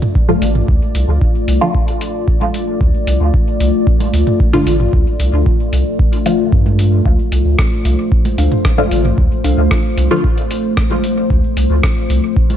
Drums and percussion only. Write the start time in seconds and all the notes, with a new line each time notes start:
0.02 mid tom
0.15 kick
0.29 mid tom, high conga
0.42 open hi-hat
0.55 mid tom
0.68 kick
0.95 open hi-hat
1.22 kick
1.48 open hi-hat
1.75 kick
1.88 open hi-hat
2.01 open hi-hat
2.28 kick
2.41 high conga
2.54 open hi-hat
2.81 kick
3.07 open hi-hat
3.34 kick
3.60 open hi-hat
3.87 kick
4.00 open hi-hat, high conga
4.14 open hi-hat
4.27 mid tom
4.40 kick
4.54 mid tom, high conga
4.67 open hi-hat
4.80 mid tom
4.93 kick
5.20 open hi-hat
5.46 kick
5.73 open hi-hat
5.99 kick
6.13 open hi-hat
6.26 open hi-hat
6.52 kick
6.66 high conga
6.79 open hi-hat
7.06 kick
7.32 open hi-hat
7.59 kick, cross-stick
7.85 open hi-hat
8.12 kick
8.25 open hi-hat, high conga
8.38 open hi-hat
8.52 mid tom
8.65 kick, cross-stick
8.78 mid tom, high conga
8.91 open hi-hat
9.05 mid tom
9.18 kick
9.44 open hi-hat
9.71 kick, cross-stick
9.98 open hi-hat
10.24 kick
10.38 open hi-hat
10.51 open hi-hat
10.77 kick, cross-stick
10.91 high conga
11.04 open hi-hat
11.30 kick
11.57 open hi-hat
11.83 kick, cross-stick
12.10 open hi-hat
12.37 kick
12.50 open hi-hat, high conga